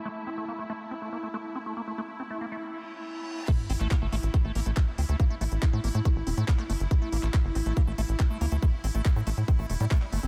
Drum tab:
CC |----------------|----------------|x---------------|----------------|
HH |----------------|----------------|x-oxx-oxx-oxx-ox|x-oxx-oxx-oxx-ox|
CP |----------------|----------------|---xx-------x---|----x-------xx--|
BD |----------------|----------------|o---o---o---o---|o---o---o---o---|

CC |----------------|----------------|
HH |x-oxx-oxx-oxx-ox|x-oxx-oxx-oxx-ox|
CP |---xx-------x---|----x-------xx--|
BD |o---o---o---o---|o---o---o---o---|